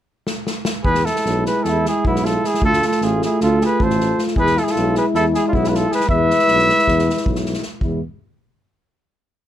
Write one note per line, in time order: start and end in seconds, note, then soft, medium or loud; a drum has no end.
0.27 snare medium
0.47 snare medium
0.65 snare medium
0.84 1.07 E2 medium
0.84 2.62 G#3 medium
0.84 2.63 E4 soft
0.84 1.07 G#4 medium
0.84 1.07 B4 loud
0.84 kick medium
0.95 snare soft
1.05 1.45 E4 medium
1.05 1.45 A4 medium
1.05 snare soft
1.16 snare soft
1.25 1.47 B1 medium
1.25 snare soft
1.46 1.70 G#4 medium
1.46 1.65 B4 medium
1.46 snare soft
1.63 1.86 E2 medium
1.63 1.85 A4 medium
1.63 snare soft
1.69 1.88 E4 medium
1.85 2.05 E4 medium
1.85 2.04 G#4 medium
1.85 snare soft
2.05 2.37 B1 medium
2.05 2.26 B3 medium
2.05 2.27 E4 medium
2.05 kick medium
2.16 snare soft
2.25 2.46 F4 medium
2.25 2.48 A4 medium
2.25 snare soft
2.44 2.62 E4 medium
2.44 2.63 G#4 medium
2.44 snare soft
2.54 snare soft
2.61 2.83 D2 medium
2.61 4.36 A3 medium
2.61 4.36 F4 medium
2.61 kick medium
2.65 2.83 F4 medium
2.65 2.83 A4 loud
2.73 snare soft
2.82 3.02 F4 medium
2.82 snare soft
2.87 3.05 A4 medium
2.91 snare soft
3.01 3.23 A1 medium
3.01 3.22 F4 medium
3.01 3.23 G#4 medium
3.01 snare soft
3.22 3.41 E4 medium
3.22 3.41 G#4 medium
3.22 snare soft
3.41 3.63 D2 loud
3.41 3.61 F4 medium
3.41 3.61 A4 medium
3.41 snare soft
3.61 3.83 G#4 medium
3.61 3.85 B4 medium
3.61 snare soft
3.80 4.11 A1 medium
3.80 4.24 A4 medium
3.80 4.24 C5 medium
3.80 kick medium
3.90 snare soft
4.00 snare soft
4.18 snare soft
4.27 snare soft
4.35 4.58 E2 medium
4.35 6.06 G#3 medium
4.35 6.06 E4 medium
4.35 4.58 G#4 medium
4.35 kick medium
4.39 4.60 B4 loud
4.47 snare soft
4.57 4.64 F4 medium
4.57 4.65 A4 medium
4.57 snare soft
4.63 4.72 E4 medium
4.63 4.72 G#4 medium
4.67 snare soft
4.71 4.97 F4 medium
4.71 4.97 A4 medium
4.76 4.98 B1 medium
4.76 snare soft
4.95 5.05 G#4 medium
4.95 5.06 B4 medium
4.95 snare soft
5.14 5.36 E2 medium
5.14 5.25 E4 loud
5.14 5.24 A4 medium
5.14 snare soft
5.34 5.47 E4 medium
5.34 5.47 G#4 medium
5.34 snare soft
5.47 5.55 D4 medium
5.47 5.56 F4 medium
5.53 5.84 B1 medium
5.53 5.67 B3 medium
5.53 5.70 E4 medium
5.53 kick medium
5.64 5.72 G#4 soft
5.64 snare soft
5.69 5.89 F4 medium
5.69 5.77 B4 medium
5.74 5.93 A4 medium
5.74 snare soft
5.90 6.08 G#4 medium
5.90 snare soft
5.94 6.09 B4 medium
6.00 snare soft
6.07 6.31 E2 medium
6.07 7.65 G#3 medium
6.07 7.63 E4 medium
6.07 7.42 B4 medium
6.07 7.42 E5 loud
6.07 kick medium
6.30 snare soft
6.39 snare soft
6.48 6.71 B1 medium
6.48 snare soft
6.59 snare soft
6.69 snare soft
6.79 snare soft
6.87 7.09 E2 loud
6.87 kick soft
6.87 snare soft
6.99 snare soft
7.10 snare soft
7.17 snare soft
7.26 7.57 B1 medium
7.26 kick medium
7.35 snare soft
7.46 snare soft
7.53 snare soft
7.62 snare soft
7.81 8.02 E2 medium
7.81 8.02 G#3 soft
7.81 8.01 E4 soft
7.81 kick medium